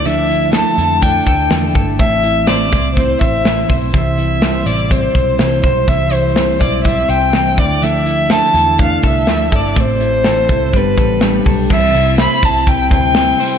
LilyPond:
<<
  \new Staff \with { instrumentName = "Violin" } { \time 4/4 \key c \major \tempo 4 = 124 e''4 a''4 g''8 g''4 r8 | e''4 d''4 c''8 e''4 r8 | e''4. d''8 c''4 c''4 | e''8 c''4 d''8 e''8 g''4 d''8 |
e''4 a''4 f''8 e''4 d''8 | c''2 b'4. r8 | e''4 b''8 a''8 g''8 g''4. | }
  \new Staff \with { instrumentName = "Clean electric guitar" } { \time 4/4 \key c \major d8 e'8 a'8 e'8 d'8 a'8 e'8 a'8 | a,8 e'8 c''8 e'8 c'8 c''8 e'8 c''8 | c8 e'8 c''8 e'8 c'8 c''8 e'8 c''8~ | c''8 e'8 c''8 e'8 c'8 c''8 e'8 d8 |
d8 e'8 a'8 e'8 d'8 a'8 e'8 a'8 | a,8 e'8 a'8 e'8 g8 a'8 g'8 a'8 | c8 e'8 c''8 e'8 c'8 e'8 c'8 c''8 | }
  \new Staff \with { instrumentName = "Clean electric guitar" } { \time 4/4 \key c \major <d f a d' e' a'>4 <d f a d' e' a'>8 <a d' e' a'>8 <a d' e' a'>4 <d f a d' e' a'>8 <a d' e' a'>8 | <a, e a c' e' c''>4 <a, e a c' e' c''>8 <a c' e' c''>8 <a c' e' c''>4 <a, e a c' e' c''>8 <a c' e' c''>8 | <c e g c' e' c''>4 <c e g c' e' c''>8 <g c' e' c''>8 <g c' e' c''>4 <c e g c' e' c''>8 <g c' e' c''>8 | <c e g c' e' c''>4 <c e g c' e' c''>8 <g c' e' c''>8 <g c' e' c''>4 <c e g c' e' c''>8 <a d' e' a'>8 |
<d f a d' e' a'>4 <d f a d' e' a'>8 <a d' e' a'>8 <a d' e' a'>4 <d f a d' e' a'>8 <a d' e' a'>8 | <a, e a c' e' a'>4 <a, e a c' e' a'>8 <a c' e' a'>8 <b d' g' a'>4 <g b d' g' a'>8 <d' g' a'>8 | <c e g c' e' c''>8 <g c' e' c''>8 <g c' e' c''>4. <g c' e' c''>8 <g c' e' c''>8 <g c' e' c''>8 | }
  \new Staff \with { instrumentName = "Picked electric bass" } { \clef bass \time 4/4 \key c \major d,4. f,4 d,8 e,8 g,,8 | a,,4. c,4 a,,4 b,,8 | c,4. a,,4 b,,8 c,8 b,,8 | c,4. b,,4 c,4 d,8~ |
d,4. e,4 c,8 d,8 g,,8 | a,,4. c,8 g,,8 a,,4 b,,8 | c,8 c,8. r16 c,4 d,4 r8 | }
  \new DrumStaff \with { instrumentName = "Drums" } \drummode { \time 4/4 hh8 hh8 <hh sn>8 hh8 <hh bd>8 <hh bd>8 <hh sn>8 <hh bd>8 | <hh bd>8 hh8 <hh sn>8 <hh bd>8 <hh bd>8 <hh bd>8 <hh sn>8 <hho bd>8 | <hh bd>8 hh8 <hh sn>8 hh8 <hh bd>8 <hh bd>8 <hh sn>8 <hh bd>8 | <hh bd>8 hh8 <hh sn>8 <hh bd>8 <hh bd>8 hh8 <hh sn>8 <hh bd>8 |
hh8 hh8 <hh sn>8 hh8 <hh bd>8 <hh bd>8 <hh sn>8 <hh bd>8 | <hh bd>8 hh8 <hh sn>8 <hh bd>8 <hh bd>8 <hh bd>8 <hh sn>8 <hho bd>8 | <cymc bd>8 <hho hhp>8 <hho hhp sn>8 <hho hhp bd>8 <hho hhp bd>8 <hho hhp bd>8 <hho hhp sn>8 <hho hhp>8 | }
>>